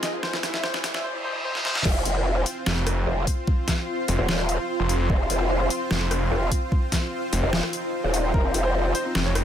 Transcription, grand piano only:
0.03 0.10 D#5 medium
0.13 0.20 F4 medium
0.23 0.30 C5 loud
0.34 0.40 E4 medium
0.43 0.50 E4 medium
0.54 0.60 E5 medium
0.64 0.70 C5 loud
0.74 0.80 E4 medium
0.84 0.91 E4 medium
0.94 1.01 E5 medium
1.04 1.11 C5 loud
1.15 1.21 E4 medium
1.24 1.31 C5 loud
1.35 1.41 E4 medium
1.45 1.51 C5 loud
1.55 1.62 E4 medium
1.65 1.72 C5 loud
1.76 1.82 E4 medium
8.34 8.41 A#4 loud
8.44 8.51 C4 medium
8.54 8.61 C4 medium
8.65 8.71 C5 medium
8.75 8.81 C4 medium
8.85 8.91 C4 medium
8.95 9.01 C5 loud
9.05 9.12 C4 medium
9.15 9.22 C4 medium
9.25 9.32 C#5 medium
9.35 9.42 C4 medium

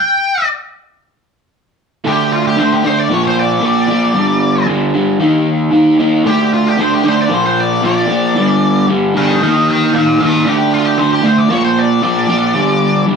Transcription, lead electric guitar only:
0.00 0.47 G5 loud
2.07 2.32 G4 medium
2.33 2.45 F4 medium
2.47 2.59 G4 medium
2.59 2.71 C5 medium
2.73 2.85 G4 medium
2.86 2.98 C5 medium
3.00 3.13 D5 medium
3.13 3.25 C#5 medium
3.27 3.39 C5 medium
3.39 3.64 D5 medium
3.66 4.66 D5 medium
6.27 6.52 G4 medium
6.54 6.68 F4 medium
6.68 6.79 G4 medium
6.81 6.92 C5 medium
6.94 7.06 G4 medium
7.08 7.19 C5 medium
7.22 7.34 D5 medium
7.34 7.45 C5 medium
7.46 7.60 C5 medium
7.60 7.84 D5 medium
7.85 8.86 D5 medium
9.17 9.42 A#4 medium
9.17 9.41 G5 medium
9.43 9.66 D#5 medium
9.43 9.67 G5 medium
9.69 9.92 D#5 medium
9.69 9.94 G5 medium
9.95 10.18 D5 medium
9.95 10.20 F5 medium
10.23 10.45 D5 medium
10.23 10.46 F5 medium
10.48 10.72 G4 medium
10.74 10.85 F4 medium
10.85 10.97 G4 medium
10.98 11.10 C5 medium
11.13 11.24 G4 medium
11.26 11.37 C5 medium
11.39 11.51 D5 medium
11.51 11.63 C#5 medium
11.65 11.79 C5 medium
11.79 12.02 D5 medium
12.04 13.05 D5 medium

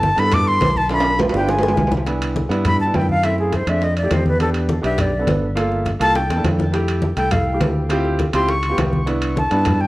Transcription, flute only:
0.00 0.21 A5 medium
0.19 0.35 B5 loud
0.34 0.49 D6 loud
0.48 0.79 C6 loud
0.77 0.91 A5 loud
0.93 1.19 B5 loud
1.36 1.52 G5 medium
1.50 1.93 G#5 medium
2.66 2.79 B5 medium
2.80 2.97 A5 medium
2.96 3.10 G5 medium
3.10 3.26 F5 loud
3.25 3.39 E5 medium
3.39 3.57 G#4 medium
3.56 3.71 C5 medium
3.69 3.85 E5 loud
3.84 3.97 D#5 medium
3.98 4.14 D5 medium
4.13 4.26 C5 medium
4.28 4.40 B4 medium
4.41 4.50 A4 medium
4.85 5.03 E5 medium
5.01 5.29 D5 medium
6.01 6.18 A5 loud
6.16 6.45 G5 medium
7.17 7.33 G5 medium
7.32 7.61 F5 medium
8.34 8.52 C6 medium
8.50 8.79 C#6 medium
9.38 9.82 A5 medium
9.81 9.87 G5 medium

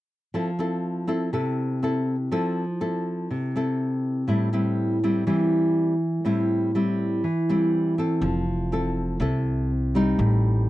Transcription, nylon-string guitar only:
0.34 1.30 F3 medium
0.34 0.49 C4 soft
0.34 0.49 E4 medium
0.34 0.49 A4 medium
0.59 1.04 C4 medium
0.59 1.05 E4 medium
0.59 1.05 A4 medium
1.07 1.29 C4 medium
1.07 1.29 E4 medium
1.07 1.29 A4 medium
1.33 2.29 C3 medium
1.33 1.78 C4 soft
1.33 1.79 E4 medium
1.33 1.79 A4 medium
1.83 2.14 C4 medium
1.83 2.15 E4 medium
1.83 2.15 A4 medium
2.31 3.28 F3 medium
2.31 2.63 C4 medium
2.31 2.63 E4 medium
2.31 2.64 A4 medium
2.81 3.51 C4 medium
2.81 3.51 E4 medium
2.81 3.51 A4 medium
3.31 4.26 C3 medium
3.56 4.25 C4 medium
3.56 4.25 E4 medium
3.56 4.26 A4 medium
4.28 5.24 A2 medium
4.28 4.49 G3 medium
4.28 4.49 C4 soft
4.28 4.49 E4 medium
4.53 4.98 G3 medium
4.53 4.98 C4 medium
4.53 4.99 E4 medium
5.03 5.24 G3 medium
5.03 5.24 C4 medium
5.03 5.24 E4 medium
5.27 6.23 E3 medium
5.27 5.93 G3 medium
5.27 5.93 C4 medium
5.27 5.93 E4 medium
6.25 7.21 A2 medium
6.25 6.71 G3 medium
6.25 6.71 C4 medium
6.25 6.71 E4 medium
6.75 7.24 G3 medium
6.75 7.24 C4 medium
6.75 7.24 E4 medium
7.24 8.20 E3 medium
7.49 7.94 G3 medium
7.49 7.94 C4 medium
7.49 7.95 E4 medium
7.98 8.43 C4 medium
7.98 8.44 E4 medium
7.98 8.44 A4 medium
8.23 9.19 F3 medium
8.72 9.17 C4 medium
8.72 9.17 E4 medium
8.72 9.18 A4 medium
9.20 10.16 C3 medium
9.20 9.70 C4 medium
9.20 9.69 E4 medium
9.20 9.70 A4 medium
9.95 10.70 G3 medium
9.95 10.70 C4 medium
9.95 10.70 D#4 medium
10.18 10.70 A2 medium

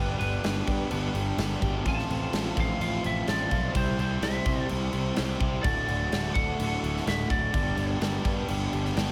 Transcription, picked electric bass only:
0.00 0.13 G1 medium
0.20 0.37 G1 medium
0.44 0.61 G1 medium
0.68 0.85 G2 medium
0.92 1.08 G1 medium
1.14 1.31 G1 medium
1.37 1.55 G1 loud
1.62 1.79 G#1 loud
1.85 2.02 A1 medium
2.09 2.26 A1 loud
2.33 2.50 A1 medium
2.58 2.74 A1 medium
2.80 2.97 A1 loud
3.05 3.22 A1 medium
3.28 3.45 A1 medium
3.52 3.69 B1 medium
3.76 3.92 C2 medium
3.99 4.16 C2 medium
4.21 4.39 C2 medium
4.46 4.63 C3 medium
4.71 4.87 C2 medium
4.93 5.10 C2 medium
5.18 5.35 C2 loud
5.41 5.58 C2 medium
5.64 5.81 D1 medium
5.89 6.05 D1 medium
6.12 6.29 D1 medium
6.35 6.52 D1 medium
6.59 6.76 D1 medium
6.83 7.00 D1 medium
7.07 7.24 D1 medium
7.30 7.47 D1 loud
7.54 7.71 G1 medium
7.77 7.94 G1 medium
8.00 8.18 G1 medium
8.25 8.42 G2 medium
8.49 8.66 G1 medium
8.73 8.90 G1 medium
8.96 9.12 G1 medium

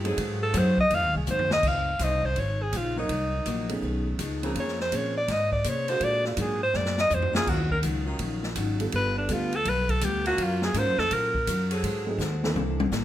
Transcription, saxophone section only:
0.05 0.52 F#3 loud
0.05 0.52 C4 medium
0.05 0.52 G#4 loud
0.05 0.52 A4 medium
0.53 0.70 F#3 medium
0.53 0.70 A3 medium
0.53 0.70 C4 medium
0.53 0.70 G#4 loud
1.99 2.55 F3 medium
1.99 2.56 C#4 medium
1.99 2.56 D#4 medium
1.99 2.55 C5 medium
2.97 3.44 F#3 medium
2.97 3.44 C4 medium
2.97 3.44 D#4 medium
2.97 3.44 A#4 loud
4.44 4.90 C#3 medium
4.44 4.90 A#3 medium
4.44 4.90 C4 medium
4.44 4.90 G#4 loud
5.89 6.36 D3 medium
5.89 6.35 G#3 medium
5.89 6.35 A#3 medium
5.89 6.35 F#4 loud
7.33 7.80 D#3 loud
7.33 7.80 F#3 medium
7.33 7.80 C#4 medium
7.33 7.81 F4 loud
8.07 8.54 D#3 loud
8.07 8.54 F#3 medium
8.07 8.53 C#4 medium
8.07 8.53 F4 loud
10.27 10.73 A#3 medium
10.27 10.73 C#4 loud
10.27 10.72 F4 loud
10.27 10.73 F#4 loud
11.72 12.18 F#3 loud
11.72 12.18 C4 loud
11.72 12.18 G#4 loud
11.72 12.18 A4 loud

